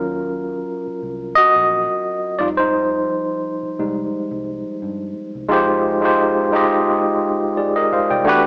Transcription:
Already playing: fingered electric bass D#2, tine electric piano F#3 C#4 F4 A#4
0.87 muted fingered electric bass stroke
1.03 fingered electric bass C2
1.35 tine electric piano F#4 D#5, muted fingered electric bass stroke
1.56 fingered electric bass A#1
2.38 fingered electric bass F2, tine electric piano F3 G3 D#4 F4 D5
2.57 tine electric piano D#4 C5
3.63 muted fingered electric bass stroke
3.79 fingered electric bass C2, tine electric piano G3 G#3 D#4
4.13 muted fingered electric bass stroke
4.31 fingered electric bass C2
4.82 fingered electric bass G2
5.35 fingered electric bass C2
5.48 fingered electric bass F2, tine electric piano G#3 D#4 F4 G4
5.53 tine electric piano C5
6.01 tine electric piano G#3 D#4 F4 G4
6.05 tine electric piano C5
6.52 tine electric piano G#3 D#4 F4 G4
6.56 tine electric piano D#5
7.57 tine electric piano G#4 D5
7.76 tine electric piano A#4 D#5
7.92 tine electric piano C5 F5, muted fingered electric bass stroke
8.10 fingered electric bass C2, tine electric piano D5 G5
8.24 fingered electric bass E2, tonewheel organ D3 E3 A3 F#5, tine electric piano A3 D4 F#4 G4
8.29 tine electric piano B4

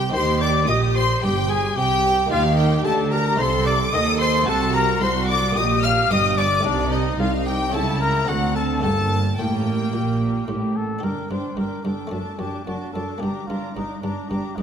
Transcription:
Already playing: double bass section C2, cello section C3, viola section G4, violin section G5
0.10 cello section D#3, harpsichord C4 D#4 G4, viola section G4, trumpet C5
0.14 double bass section D#2, harpsichord D#3, violin section C6
0.40 trumpet D5, violin section D6
0.68 double bass section A#1, cello section A#2, harpsichord A#2, viola section G4, trumpet D#5, violin section D#6
0.95 trumpet C5, violin section C6
1.22 double bass section G1, cello section G2, harpsichord G2, viola section G4, trumpet G4, violin section G5
1.49 trumpet G#4, violin section G#5
1.76 double bass section C2, cello section C3, harpsichord C3, viola section G4, trumpet G4, violin section G5
2.26 double bass section D#2, harpsichord A#3 D#4 G4
2.31 harpsichord D#3, cello section D#3, trumpet F4, viola section G4, violin section F5
2.58 trumpet G4, violin section G5
2.84 double bass section D2, harpsichord D3, cello section D3, trumpet A4, violin section A5
3.11 trumpet A#4, violin section A#5
3.36 double bass section C2, cello section C3, harpsichord A3 D#4 A4, viola section A4, trumpet C5, violin section C6
3.40 harpsichord C3
3.65 trumpet D5, violin section D6
3.92 double bass section D#2, cello section D#3, harpsichord D#3, viola section A4, trumpet D#5, violin section D#6
4.20 trumpet C5, violin section C6
4.43 harpsichord A3 D4 F#4, violin section A5
4.47 double bass section C2, harpsichord C3, cello section C3, viola section F#4, trumpet A4
4.73 trumpet A#4, violin section A#5
5.01 double bass section C2, harpsichord C2, cello section C2, viola section F#4, trumpet C5, violin section C6
5.28 trumpet D5, violin section D6
5.51 harpsichord A#3 D4 G4, violin section D#6
5.56 double bass section A#1, harpsichord A#2, cello section A#2, viola section G4, trumpet D#5, violin section D#6
5.83 trumpet F5, violin section F6
6.10 double bass section G1, cello section G2, harpsichord G2, trumpet D#5, violin section D#6
6.37 trumpet D5, violin section D6
6.60 harpsichord A3 C4 D#4, violin section D5
6.64 double bass section C2, cello section C3, harpsichord C3, trumpet D4, viola section D#4, violin section D5
6.92 trumpet D#4, violin section D#5
7.19 double bass section C2, cello section C2, harpsichord C2, trumpet F4, violin section F5
7.46 trumpet G4, violin section G5
7.70 double bass section C#2, harpsichord C#4 E4 G4, viola section E4, trumpet A4, violin section A5
7.74 cello section C#3, harpsichord C#3, violin section A5
8.00 trumpet A#4, violin section A#5
8.25 double bass section D2, cello section D3, harpsichord C4 D4 A4, viola section C4, trumpet F#4, violin section F#5
8.29 harpsichord D3
8.55 trumpet A4, violin section A5
8.80 double bass section G1, cello section G2, harpsichord A#3 D4 G4, viola section A#3, trumpet A4, violin section A5
8.85 harpsichord G2
9.37 double bass section A1, cello section A2, harpsichord A2, viola section A#3, trumpet G4, violin section G5
9.93 double bass section A#1, harpsichord A#2, cello section A#2
10.47 double bass section A1, harpsichord A2, cello section A2, trumpet G4
10.76 trumpet A4
10.99 harpsichord D4 G4, viola section D4, violin section D6
11.03 double bass section G1, harpsichord G2, cello section G2, trumpet A#4, violin section G5
11.29 double bass section G1, cello section G2, harpsichord G2, viola section D4, trumpet C5, violin section G5 D6
11.57 double bass section G1, harpsichord G2, cello section G2, viola section D4, trumpet A#4, violin section G5 D6
11.84 double bass section G1, cello section G2, harpsichord G2, viola section D4, trumpet A4, violin section G5 D6
12.07 harpsichord A3 D4
12.11 double bass section F#1, harpsichord F#2, cello section F#2, viola section D4, violin section A5 D6
12.39 double bass section F#1, harpsichord F#2, cello section F#2, viola section D4, trumpet G4, violin section A5 D6
12.66 double bass section F#1, cello section F#2, harpsichord F#2, viola section D4, trumpet F#4, violin section A5 D6
12.93 double bass section F#1, cello section F#2, harpsichord F#2, viola section D4, trumpet A4, violin section A5 D6
13.18 double bass section G1, cello section G2, harpsichord A#3 D4, viola section D4, trumpet G4, violin section A#5 D6
13.23 harpsichord G2
13.47 double bass section G1, cello section G2, harpsichord G2, viola section D4, trumpet F4, violin section A#5 D6
13.74 double bass section G1, cello section G2, harpsichord G2, viola section D4, trumpet D#4, violin section A#5 D6
14.02 double bass section G1, cello section G2, harpsichord G2, trumpet D4, viola section D4, violin section A#5 D6
14.30 double bass section G1, cello section G2, harpsichord G2, viola section D4, trumpet G4, violin section A#5 D6
14.56 double bass section G1, cello section G2, harpsichord G2, viola section D4, trumpet D#4, violin section A#5 D6

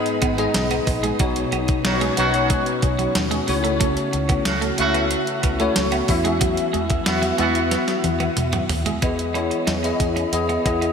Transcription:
Already playing: tine electric piano G#2 B3 D#4 G#4 D#5, ambient pad G#3 D#4 B4
0.06 closed hi-hat
0.22 fingered electric bass G#1, clean electric guitar B3, kick, closed hi-hat
0.38 clean electric guitar G#3, tine electric piano B3 D#4 G#4 D#5, closed hi-hat
0.54 fingered electric bass B1, snare, closed hi-hat
0.71 clean electric guitar B3, closed hi-hat
0.87 fingered electric bass A#1, muted clean electric guitar stroke, kick, open hi-hat
1.03 clean electric guitar G#3, closed hi-hat
1.19 fingered electric bass B1, tine electric piano B2 B3 D#4 F#4 C#5, clean electric guitar F#3, ambient pad B3 C#4, kick, closed hi-hat
1.36 closed hi-hat
1.52 fingered electric bass B1, clean electric guitar B3, closed hi-hat
1.68 muted clean electric guitar stroke, kick, closed hi-hat
1.85 fingered electric bass B1, horn section D#3 C#4 F#4, tine electric piano B3 D#4 F#4 C#5, muted clean electric guitar stroke, snare, closed hi-hat
2.01 clean electric guitar G#3, closed hi-hat
2.17 fingered electric bass B1, horn section D#3 C#4 F#4, clean electric guitar F#3, tine electric piano B3 D#4 F#4 C#5, closed hi-hat
2.34 closed hi-hat
2.50 clean electric guitar G#3, kick, closed hi-hat
2.66 closed hi-hat
2.82 fingered electric bass B1, muted clean electric guitar stroke, kick, closed hi-hat
2.99 clean electric guitar F#3, closed hi-hat
3.15 fingered electric bass D#2, snare, closed hi-hat
3.31 clean electric guitar G#3, closed hi-hat
3.47 fingered electric bass C#2, tine electric piano C#3 A3 E4 F#4 C#5, ambient pad A3 F#4, muted clean electric guitar stroke, open hi-hat
3.64 clean electric guitar A3, closed hi-hat
3.80 clean electric guitar A3, kick, closed hi-hat
3.97 closed hi-hat
4.13 fingered electric bass C#2, muted clean electric guitar stroke, closed hi-hat
4.29 clean electric guitar B3, kick, closed hi-hat
4.45 fingered electric bass C#2, horn section C#3 A3 F#4, snare, closed hi-hat
4.61 clean electric guitar A3, closed hi-hat
4.78 fingered electric bass C#2, horn section C#3 A3 F#4, tine electric piano A3 E4 F#4 E5, muted clean electric guitar stroke, closed hi-hat
4.94 clean electric guitar B3, closed hi-hat
5.11 muted clean electric guitar stroke, closed hi-hat
5.27 closed hi-hat
5.43 fingered electric bass C#2, clean electric guitar B3, kick, closed hi-hat
5.60 tine electric piano A3 E4 F#4 C#5, clean electric guitar A3, closed hi-hat
5.76 fingered electric bass C#2, snare, closed hi-hat
5.92 clean electric guitar B3, closed hi-hat
6.08 fingered electric bass E2, tine electric piano E3 B3 E4 F#4 E5, ambient pad B3 E4, muted clean electric guitar stroke, kick, open hi-hat
6.25 clean electric guitar G#3, closed hi-hat
6.41 clean electric guitar F#3, kick, closed hi-hat
6.57 closed hi-hat
6.73 fingered electric bass E2, clean electric guitar G#3, closed hi-hat
6.90 muted clean electric guitar stroke, kick, closed hi-hat
7.06 fingered electric bass E2, tine electric piano B3 E4 F#4 E5, horn section B3 F#4, muted clean electric guitar stroke, snare, closed hi-hat
7.22 clean electric guitar F#3, closed hi-hat
7.38 fingered electric bass E2, clean electric guitar G#3, tine electric piano B3 E4 F#4 E5, horn section B3 F#4, closed hi-hat
7.55 closed hi-hat
7.71 clean electric guitar B3, snare, closed hi-hat
7.88 snare, closed hi-hat
8.04 fingered electric bass E2, muted clean electric guitar stroke, closed hi-hat, high tom
8.20 clean electric guitar B3, closed hi-hat, high tom
8.37 fingered electric bass E2, closed hi-hat, mid tom
8.53 clean electric guitar F#3, closed hi-hat, mid tom
8.69 fingered electric bass D#2, muted clean electric guitar stroke, floor tom, open hi-hat
8.86 clean electric guitar G#3, closed hi-hat, floor tom
9.02 fingered electric bass E2, tine electric piano E3 B3 E4 G#4 D#5, clean electric guitar B3, kick, closed hi-hat
9.19 closed hi-hat
9.34 tine electric piano B3 E4 G#4 C#5, clean electric guitar C#4, closed hi-hat
9.51 muted clean electric guitar stroke, closed hi-hat
9.67 fingered electric bass E2, clean electric guitar D#4, snare, closed hi-hat
9.83 tine electric piano B3 E4 G#4 D#5, muted clean electric guitar stroke, closed hi-hat
10.00 fingered electric bass E2, kick, closed hi-hat
10.16 clean electric guitar C#4, closed hi-hat
10.32 fingered electric bass E2, tine electric piano B3 E4 G#4 D#5, closed hi-hat
10.49 clean electric guitar B3, closed hi-hat
10.65 fingered electric bass E2, tine electric piano B3 E4 G#4 D#5, muted clean electric guitar stroke, kick, closed hi-hat
10.82 clean electric guitar B3, closed hi-hat

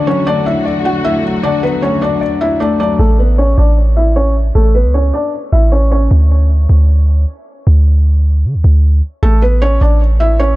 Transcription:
Already playing: grand piano D3, string section D3 F#3 A3 F#4
0.07 grand piano F#3, felt piano C#4 C#5
0.26 grand piano A3, felt piano D4 D5
0.46 grand piano D4, felt piano E4 E5
0.66 grand piano D5
0.85 felt piano F#4 F#5
1.04 grand piano A3, felt piano E4 E5
1.24 grand piano F#3
1.43 grand piano D3, felt piano D4 D5
1.63 grand piano F#3, felt piano B3 B4
1.82 grand piano A3, felt piano C#4 C#5
2.02 grand piano D4, felt piano D4 D5
2.21 grand piano D5
2.41 felt piano E4 E5
2.60 grand piano A3, felt piano D4 D5
2.80 grand piano F#3, felt piano D4 D5
2.99 808-style bass A1, felt piano A3 A4
3.19 felt piano B3 B4
3.38 felt piano C#4 C#5
3.58 808-style bass A1, felt piano D4 D5
3.97 felt piano E4 E5
4.16 felt piano C#4 C#5
4.55 808-style bass A1, felt piano A3 A4
4.75 felt piano B3 B4
4.84 808-style bass C#2
4.94 felt piano C#4 C#5
5.14 felt piano D4 D5
5.53 808-style bass A1, felt piano E4 E5
5.72 felt piano C#4 C#5
5.91 felt piano C#4 C#5
6.11 808-style bass D2
6.69 808-style bass D2
7.67 808-style bass D2
8.45 808-style bass D3
8.54 808-style bass D2
8.64 808-style bass D2
9.23 808-style bass A1, felt piano A3 A4
9.42 felt piano B3 B4
9.62 felt piano C#4 C#5
9.81 808-style bass A1, felt piano D4 D5
10.20 felt piano E4 E5
10.40 felt piano C#4 C#5

